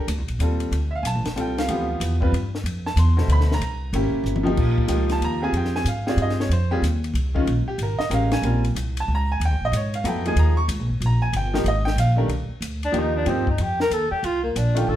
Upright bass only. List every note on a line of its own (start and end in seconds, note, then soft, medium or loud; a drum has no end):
0.08 0.18 D2 medium
0.18 0.28 C2 medium
0.28 0.39 A#1 medium
0.39 0.71 D#2 medium
0.71 1.02 D2 medium
1.03 1.14 B1 medium
1.14 1.24 A1 medium
1.25 1.35 F1 medium
1.36 1.68 C2 medium
1.69 1.99 D2 medium
2.00 2.31 E2 loud
2.32 2.63 G2 medium
2.64 2.95 F2 loud
2.96 3.27 E2 loud
3.28 3.59 D2 medium
3.60 3.92 C2 loud
3.93 4.12 G#1 loud
4.12 muted upright bass stroke soft
4.24 4.56 G1 medium
4.57 4.88 A#1 medium
4.89 5.20 C#2 medium
5.21 5.52 D#2 medium
5.52 5.84 F2 medium
5.85 6.16 G#2 medium
6.17 6.49 G2 medium
6.49 6.81 F2 medium
6.82 7.13 D#2 medium
7.14 7.45 C2 loud
7.46 7.66 A#1 medium
7.67 muted upright bass stroke soft
7.78 7.98 G#1 medium
7.99 muted upright bass stroke soft
8.10 8.42 A1 medium
8.42 8.74 A#1 medium
8.75 9.07 C2 medium
9.08 9.39 C#2 medium
9.40 9.51 D#2 medium
9.51 9.60 C#2 medium
9.61 9.71 A#1 medium
9.72 10.03 G#2 loud
10.04 10.35 F2 medium
10.36 10.68 D#2 loud
10.68 10.79 C#2 medium
10.79 10.89 A#1 medium
10.89 11.00 G#1 medium
11.01 11.32 A#1 medium
11.33 11.64 G1 medium
11.64 11.95 G#1 loud
11.96 12.28 A#1 loud
12.28 12.48 C2 medium
12.49 muted upright bass stroke soft
12.61 12.92 D2 medium
12.93 13.25 D#2 medium
13.26 13.57 G2 medium
13.59 13.90 F2 medium
13.91 14.10 D#2 medium
14.11 muted upright bass stroke soft
14.23 14.54 C2 loud
14.56 14.87 A#1 loud
14.87 14.96 A1 medium